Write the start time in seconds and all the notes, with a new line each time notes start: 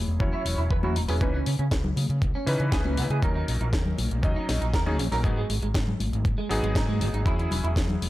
Already playing: F#3 C#4 E4 G#4
0.07 E1
0.20 E2 F#3 C#4 E4 C#5, kick
0.33 E4, muted fingered electric bass stroke
0.45 E1, open hi-hat
0.58 E1 E4
0.71 E2 B4, kick
0.83 F#3 C#4 E4 F#4, high conga
0.96 E1 D#4, open hi-hat
1.08 E1 F#3 C#4 E4 G#4 B4, open hi-hat, high conga
1.21 C#2 E3 C#4 D#4 B4, kick, closed hi-hat
1.34 C#4
1.46 C#3 C#4, open hi-hat
1.59 C#3 C#4, closed hi-hat
1.71 C#2, kick, snare, closed hi-hat
1.84 low conga
1.96 C#3, open hi-hat, high conga
2.09 C#3, closed hi-hat
2.22 C#2, kick, closed hi-hat
2.35 C#4
2.46 C#3 E3 C#4 D#4 B4, open hi-hat
2.60 C#3 C#4, closed hi-hat
2.72 C#2 G#4, kick, snare, closed hi-hat
2.85 C#4, high conga
2.97 C#3 B3, open hi-hat
3.10 C#3 G#4, closed hi-hat, high conga
3.22 D#2 F#3 C#4 D#4 A#4, kick, closed hi-hat
3.35 D#4
3.48 A#1 D#4, open hi-hat
3.61 A#1 D#4, closed hi-hat
3.73 D#2, kick, snare, closed hi-hat
3.86 low conga
3.98 A#1, open hi-hat, high conga
4.11 A#1, closed hi-hat
4.23 D#2 F#3 C#4 D#4 D#5, kick, closed hi-hat
4.36 D#4, muted fingered electric bass stroke
4.49 A#1, snare, open hi-hat
4.61 A#1 D#4, closed hi-hat
4.74 D#2 A#4, kick, snare, closed hi-hat
4.86 F#3 C#4 D#4 G#4, high conga
4.99 A#1 C#4, open hi-hat
5.12 A#1 F#3 C#4 D#4 A#4, open hi-hat, high conga
5.23 G#2 F#3 G#3 B3 D#4 G#4, kick, closed hi-hat
5.37 G#3
5.50 G#1 G#3, open hi-hat
5.62 G#1 G#3, closed hi-hat
5.74 G#2, kick, snare, closed hi-hat
5.87 low conga
6.00 G#1, open hi-hat, high conga
6.13 G#1, closed hi-hat
6.25 G#2, kick, closed hi-hat
6.38 G#3
6.49 G#1 F#3 B3 D#4 G#4, open hi-hat
6.63 G#1 G#3, closed hi-hat
6.75 G#2 D#4, kick, snare, closed hi-hat
6.88 G#3, high conga
7.01 G#1 F#3, open hi-hat
7.13 G#1 D#4, closed hi-hat, high conga
7.25 E2 F#3 C#4 E4 G#4, kick, closed hi-hat
7.39 E4, closed hi-hat
7.51 E1 E4, open hi-hat, low conga
7.64 E1 E4, closed hi-hat
7.76 E2, kick, snare, closed hi-hat
7.88 closed hi-hat, low conga
8.02 E1, open hi-hat, high conga